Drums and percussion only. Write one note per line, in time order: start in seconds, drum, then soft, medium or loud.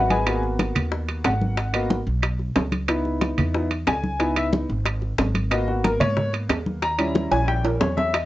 0.10 high bongo soft
0.10 high conga medium
0.10 high timbale medium
0.26 high bongo medium
0.26 high conga soft
0.26 high timbale loud
0.26 claves medium
0.43 high bongo soft
0.43 high conga soft
0.59 high bongo medium
0.59 high conga loud
0.59 high timbale medium
0.59 low timbale medium
0.75 high bongo soft
0.75 high conga soft
0.75 low conga medium
0.75 high timbale medium
0.75 claves medium
0.92 high bongo medium
0.92 high conga soft
1.08 high bongo soft
1.08 high conga soft
1.08 high timbale medium
1.24 high bongo medium
1.24 low bongo medium
1.24 high conga soft
1.24 high timbale medium
1.24 low timbale medium
1.24 claves medium
1.41 high conga medium
1.57 high bongo medium
1.57 high conga soft
1.57 high timbale medium
1.74 high bongo soft
1.74 high conga soft
1.74 high timbale loud
1.74 claves medium
1.90 high bongo medium
1.90 high conga loud
1.90 low timbale medium
2.07 high conga soft
2.23 high bongo medium
2.23 high conga soft
2.23 high timbale medium
2.23 claves medium
2.39 high bongo soft
2.39 high conga soft
2.56 high bongo medium
2.56 low bongo medium
2.56 high conga medium
2.56 high timbale medium
2.56 low timbale medium
2.72 high bongo soft
2.72 high conga medium
2.72 high timbale medium
2.88 high bongo medium
2.88 high conga soft
2.88 high timbale medium
2.88 claves medium
3.05 high bongo soft
3.05 high conga soft
3.21 high bongo medium
3.21 high conga loud
3.21 high timbale medium
3.21 low timbale medium
3.38 high bongo soft
3.38 high conga soft
3.38 low conga medium
3.38 high timbale medium
3.38 claves medium
3.54 high bongo medium
3.54 high conga soft
3.71 high bongo soft
3.71 high conga soft
3.71 high timbale medium
3.87 high bongo medium
3.87 low bongo medium
3.87 high conga soft
3.87 high timbale medium
3.87 low timbale medium
3.87 claves medium
4.04 high conga medium
4.20 high bongo medium
4.20 high conga soft
4.20 high timbale medium
4.36 high bongo soft
4.36 high conga soft
4.36 high timbale medium
4.36 claves medium
4.53 high bongo medium
4.53 high conga loud
4.53 low timbale medium
4.70 high conga soft
4.85 high bongo medium
4.85 high conga soft
4.85 high timbale medium
4.85 claves medium
5.02 high bongo soft
5.02 high conga soft
5.18 high bongo medium
5.18 low bongo medium
5.18 high conga medium
5.18 high timbale medium
5.18 low timbale medium
5.35 high bongo soft
5.35 high conga medium
5.35 high timbale medium
5.51 high bongo medium
5.51 high conga soft
5.51 high timbale loud
5.51 claves medium
5.68 high bongo soft
5.68 high conga soft
5.84 high bongo medium
5.84 high conga loud
5.84 high timbale medium
5.84 low timbale medium
6.01 high bongo soft
6.01 high conga soft
6.01 low conga medium
6.01 high timbale medium
6.01 claves medium
6.17 high bongo medium
6.17 high conga soft
6.17 low conga medium
6.33 high bongo soft
6.33 high conga soft
6.33 high timbale medium
6.50 high bongo medium
6.50 low bongo medium
6.50 high conga soft
6.50 high timbale medium
6.50 low timbale medium
6.50 claves medium
6.66 high conga medium
6.82 high bongo medium
6.82 high conga soft
6.82 high timbale medium
6.99 high bongo soft
6.99 high conga soft
6.99 high timbale medium
6.99 claves medium
7.15 high bongo medium
7.15 high conga loud
7.15 low timbale medium
7.32 high conga soft
7.32 high timbale medium
7.48 high bongo medium
7.48 high conga soft
7.48 claves medium
7.65 high bongo soft
7.65 high conga soft
7.65 high timbale medium
7.81 high bongo medium
7.81 low bongo medium
7.81 high conga medium
7.81 low timbale medium
7.97 high bongo soft
7.97 high conga medium
7.97 low timbale medium
8.14 high bongo medium
8.14 high conga soft
8.14 high timbale medium
8.14 claves medium